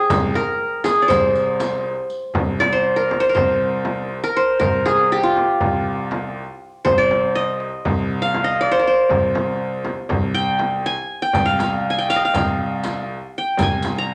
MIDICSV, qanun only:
0, 0, Header, 1, 2, 480
1, 0, Start_track
1, 0, Tempo, 500000
1, 96, Time_signature, 9, 3, 24, 8
1, 13574, End_track
2, 0, Start_track
2, 0, Title_t, "Qanun"
2, 0, Program_c, 0, 107
2, 0, Note_on_c, 0, 68, 88
2, 340, Note_on_c, 0, 70, 85
2, 804, Note_off_c, 0, 68, 0
2, 808, Note_on_c, 0, 68, 81
2, 982, Note_on_c, 0, 74, 60
2, 1037, Note_on_c, 0, 72, 74
2, 1427, Note_off_c, 0, 70, 0
2, 1937, Note_off_c, 0, 74, 0
2, 1975, Note_off_c, 0, 68, 0
2, 2051, Note_off_c, 0, 72, 0
2, 2496, Note_on_c, 0, 74, 87
2, 2617, Note_on_c, 0, 72, 77
2, 2844, Note_on_c, 0, 70, 69
2, 3070, Note_off_c, 0, 72, 0
2, 3074, Note_on_c, 0, 72, 70
2, 3158, Note_off_c, 0, 70, 0
2, 3162, Note_on_c, 0, 70, 61
2, 3208, Note_off_c, 0, 72, 0
2, 3212, Note_on_c, 0, 72, 66
2, 3451, Note_off_c, 0, 74, 0
2, 4062, Note_off_c, 0, 70, 0
2, 4066, Note_on_c, 0, 70, 84
2, 4187, Note_off_c, 0, 72, 0
2, 4191, Note_on_c, 0, 72, 84
2, 4408, Note_off_c, 0, 70, 0
2, 4412, Note_on_c, 0, 70, 86
2, 4661, Note_on_c, 0, 68, 81
2, 4915, Note_on_c, 0, 67, 80
2, 4973, Note_off_c, 0, 68, 0
2, 5024, Note_on_c, 0, 65, 75
2, 5204, Note_off_c, 0, 72, 0
2, 5499, Note_off_c, 0, 70, 0
2, 6120, Note_off_c, 0, 67, 0
2, 6317, Note_off_c, 0, 65, 0
2, 6572, Note_on_c, 0, 72, 77
2, 6699, Note_on_c, 0, 74, 80
2, 7060, Note_on_c, 0, 75, 86
2, 7118, Note_off_c, 0, 74, 0
2, 7586, Note_off_c, 0, 72, 0
2, 7890, Note_on_c, 0, 77, 87
2, 7975, Note_off_c, 0, 75, 0
2, 8105, Note_on_c, 0, 75, 77
2, 8262, Note_on_c, 0, 74, 84
2, 8320, Note_off_c, 0, 75, 0
2, 8366, Note_on_c, 0, 72, 75
2, 8443, Note_on_c, 0, 70, 60
2, 8515, Note_off_c, 0, 72, 0
2, 8519, Note_on_c, 0, 72, 70
2, 8743, Note_off_c, 0, 77, 0
2, 9218, Note_off_c, 0, 74, 0
2, 9530, Note_off_c, 0, 70, 0
2, 9556, Note_off_c, 0, 72, 0
2, 9931, Note_on_c, 0, 79, 84
2, 10425, Note_on_c, 0, 80, 94
2, 10482, Note_off_c, 0, 79, 0
2, 10773, Note_on_c, 0, 79, 83
2, 10830, Note_off_c, 0, 80, 0
2, 10997, Note_on_c, 0, 77, 80
2, 11426, Note_on_c, 0, 80, 80
2, 11483, Note_off_c, 0, 79, 0
2, 11505, Note_on_c, 0, 79, 78
2, 11563, Note_off_c, 0, 80, 0
2, 11611, Note_off_c, 0, 77, 0
2, 11615, Note_on_c, 0, 77, 76
2, 11674, Note_on_c, 0, 75, 63
2, 11756, Note_off_c, 0, 77, 0
2, 11760, Note_on_c, 0, 77, 71
2, 12300, Note_off_c, 0, 79, 0
2, 12590, Note_off_c, 0, 75, 0
2, 12612, Note_off_c, 0, 77, 0
2, 12844, Note_on_c, 0, 79, 70
2, 13080, Note_on_c, 0, 80, 74
2, 13137, Note_off_c, 0, 79, 0
2, 13424, Note_on_c, 0, 82, 75
2, 13574, Note_off_c, 0, 80, 0
2, 13574, Note_off_c, 0, 82, 0
2, 13574, End_track
0, 0, End_of_file